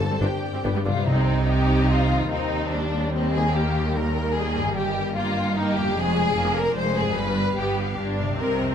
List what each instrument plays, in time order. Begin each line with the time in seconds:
Already playing: timpani G2, harp G2 C5, violin section A4 A5
0.00 harp C4
0.10 cello section G2, viola section G3 C4
0.21 tuba G1, double bass section G1, cello section G2, viola section C4 D4, harp D4, violin section G4 G5
0.42 harp D5
0.53 cello section G2, viola section G3 C4
0.64 tuba G1, double bass section G1, harp G2, cello section G2, viola section B3 D4
0.75 cello section G2, viola section G3 B3
0.85 tuba G1, double bass section G1, cello section G2, harp C3 D4 D5, viola section D3 G3, violin section F4
0.93 cello section G2, harp G3, viola section G3 B3
0.98 harp D#4
1.02 cello section C3, harp C5
1.07 double bass section C2, timpani C3, viola section C4, violin section D#4 D#5
1.17 violin section C5
1.27 violin section D#5
1.36 violin section C5
1.47 viola section D#4, violin section G4 D#5
1.57 violin section C5
1.67 violin section D#5
1.78 violin section C5
1.87 violin section F4 D#5
1.98 violin section C5
2.09 harp D#3, violin section D#5
2.16 harp G3, violin section C5
2.20 harp D#4
2.25 harp C5
2.29 cello section D#2, double bass section D#2, viola section C4, violin section D#4 D#5
2.40 violin section C5
2.50 violin section D#5
2.61 violin section C5
2.71 viola section G3, violin section D4 D#5
2.83 violin section C5
2.93 violin section D#5
3.05 violin section C5
3.13 violin section C4 D#5
3.27 violin section C5
3.33 harp D#3, violin section G#4 D#5
3.40 harp A#3
3.45 harp D#4, violin section C5
3.49 violin section G4, harp A#4
3.54 viola section A#3, violin section G5
3.65 violin section D#5
3.77 violin section G5
3.86 violin section D#5
3.94 viola section G3, violin section A#4 G5
4.08 violin section D#5
4.16 violin section G5
4.25 violin section D#5
4.33 violin section G#4 G5
4.47 violin section D#5
4.56 harp G2, violin section G5
4.61 harp A#3 D#4
4.67 harp A#4, violin section D#5
4.74 double bass section G1, cello section G2, violin section G4 G5
4.86 violin section D#5
4.97 violin section G5
5.07 violin section D#5
5.15 viola section A#3, violin section F4 G5
5.26 violin section D#5
5.37 violin section G5
5.46 violin section D#5
5.55 viola section A#3, violin section D#4 G5
5.66 violin section D#5
5.74 harp F2, violin section G4 G5
5.82 harp D4, violin section D#5
5.87 harp F4
5.91 cello section F2, harp G#4
5.96 double bass section F1, viola section G#3, violin section G#4
6.18 violin section D5
6.36 double bass section F1, cello section F2, viola section A#3
6.56 violin section A#4 D5
6.76 double bass section F1, cello section F2, viola section G#3, violin section C5
6.97 harp G2, violin section G#4 D5
7.03 harp D4
7.08 harp F4
7.12 double bass section G1, cello section G2, harp G4, violin section B4
7.17 viola section G3, violin section F5
7.38 violin section F5
7.57 double bass section G1, cello section G2, viola section B3, violin section G4
7.77 violin section F5
7.96 double bass section G1, cello section G2, viola section D4
8.17 harp C3, violin section F5
8.23 harp C4
8.28 harp D#4
8.33 harp G4
8.37 double bass section C2, cello section C3, viola section C4, violin section A#4
8.57 harp F2, violin section D#5
8.64 harp D4
8.69 harp F4